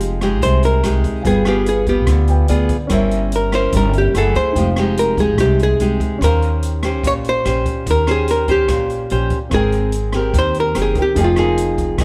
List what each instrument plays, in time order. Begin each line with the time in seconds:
Already playing: upright bass F1, nylon-string guitar F3 G#3 D#4 G4, grand piano F4 D#5 G5, hollow-body jazz guitar G4
0.00 closed hi-hat
0.21 nylon-string guitar G#3 D#4 G4, cross-stick, closed hi-hat
0.42 upright bass C2, nylon-string guitar C3, hollow-body jazz guitar C5, kick, closed hi-hat
0.63 hollow-body jazz guitar A#4, closed hi-hat
0.83 upright bass C2, nylon-string guitar G#3 D#4 G4, cross-stick, closed hi-hat
1.04 kick, closed hi-hat
1.22 upright bass G1, nylon-string guitar G3, grand piano F4 G#5, kick, closed hi-hat
1.26 nylon-string guitar B3 F4 G#4, hollow-body jazz guitar G#4, grand piano B4 G5
1.45 nylon-string guitar B3 F4 G#4, hollow-body jazz guitar G4, cross-stick, closed hi-hat
1.66 hollow-body jazz guitar G#4, closed hi-hat
1.86 nylon-string guitar B3 F4, hollow-body jazz guitar G4, kick, closed hi-hat
2.07 upright bass D2, nylon-string guitar D3, kick, cross-stick, closed hi-hat
2.27 grand piano F4 B4 G5 G#5, closed hi-hat
2.48 upright bass D2, nylon-string guitar B3 F4 G#4, grand piano D5, closed hi-hat
2.69 kick, closed hi-hat
2.87 upright bass G1, nylon-string guitar G3 C#4 E4 A#4, grand piano C#4 A#4, kick, cross-stick, closed hi-hat
2.91 grand piano C5 E5
3.11 closed hi-hat
3.32 hollow-body jazz guitar A#4, closed hi-hat
3.52 nylon-string guitar C#4 E4 A#4, hollow-body jazz guitar C5, cross-stick, closed hi-hat
3.72 upright bass G1, nylon-string guitar G3, kick, closed hi-hat
3.77 hollow-body jazz guitar A#4
3.93 closed hi-hat
3.98 hollow-body jazz guitar G4
4.14 upright bass F#1, nylon-string guitar A3 E4 G#4, grand piano E4 G#4 F#5, cross-stick, closed hi-hat
4.18 hollow-body jazz guitar A4
4.35 hollow-body jazz guitar C5, kick, closed hi-hat
4.52 upright bass F1, nylon-string guitar F3, grand piano D#4 G5, kick, closed hi-hat
4.57 nylon-string guitar G#3 D#4 G4, grand piano F5
4.76 nylon-string guitar G#3 D#4 G4, cross-stick, closed hi-hat
4.97 hollow-body jazz guitar A#4, closed hi-hat
5.17 nylon-string guitar G#3 D#4 G4, hollow-body jazz guitar G#4, kick, closed hi-hat
5.38 upright bass C2, nylon-string guitar C3, hollow-body jazz guitar G4, kick, cross-stick, closed hi-hat
5.59 hollow-body jazz guitar G#4, closed hi-hat
5.79 upright bass C2, nylon-string guitar G#3 D#4 G4, closed hi-hat
6.00 kick, closed hi-hat
6.18 upright bass D#2, grand piano C#4 G4 C5, kick, cross-stick, closed hi-hat
6.23 nylon-string guitar D#3 C#4 G4 C5, hollow-body jazz guitar A#4, grand piano F5
6.42 closed hi-hat
6.63 closed hi-hat
6.83 nylon-string guitar C#4 G4 C5, cross-stick, closed hi-hat
7.04 upright bass A#1, nylon-string guitar A#2, hollow-body jazz guitar C#5, kick, closed hi-hat
7.24 closed hi-hat
7.29 hollow-body jazz guitar C5
7.45 upright bass A#1, nylon-string guitar C#4 G4 C5, cross-stick, closed hi-hat
7.66 kick, closed hi-hat
7.86 upright bass D#2, nylon-string guitar D#3, kick, closed hi-hat
7.91 hollow-body jazz guitar A#4
8.07 nylon-string guitar C#4 G4 C5, cross-stick, closed hi-hat
8.11 hollow-body jazz guitar G#4
8.28 hollow-body jazz guitar A#4, closed hi-hat
8.48 nylon-string guitar C#4 G4 C5, hollow-body jazz guitar G4, kick, closed hi-hat
8.68 upright bass A#1, nylon-string guitar A#2, kick, cross-stick, closed hi-hat
8.90 closed hi-hat
9.10 upright bass A#1, nylon-string guitar C#4 G4 C5, closed hi-hat
9.30 kick, closed hi-hat
9.49 upright bass G#1, nylon-string guitar G#3 C4, grand piano C4, kick, cross-stick, closed hi-hat
9.54 hollow-body jazz guitar G#4, nylon-string guitar A#4, grand piano A#4 G5
9.72 closed hi-hat
9.92 closed hi-hat
10.12 nylon-string guitar C4 G4 A#4, cross-stick, closed hi-hat
10.34 upright bass D#2, nylon-string guitar D#3, kick, closed hi-hat
10.39 hollow-body jazz guitar C5
10.54 closed hi-hat
10.60 hollow-body jazz guitar A#4
10.75 upright bass F#1, nylon-string guitar C4 G4 A#4, cross-stick, closed hi-hat
10.82 hollow-body jazz guitar G#4
10.95 grand piano C4 G#4 A#4 G5, kick, closed hi-hat
11.02 hollow-body jazz guitar G4
11.15 upright bass F1, nylon-string guitar F3 A#3 D#4 G#4, grand piano D#4 G#4 A#4, kick, closed hi-hat
11.21 hollow-body jazz guitar F4, grand piano G5
11.36 nylon-string guitar A#3 D#4 G#4, cross-stick, closed hi-hat
11.58 closed hi-hat
11.78 kick, closed hi-hat
11.98 upright bass C2, nylon-string guitar C3 A#3 D#4 G#4, kick, cross-stick, closed hi-hat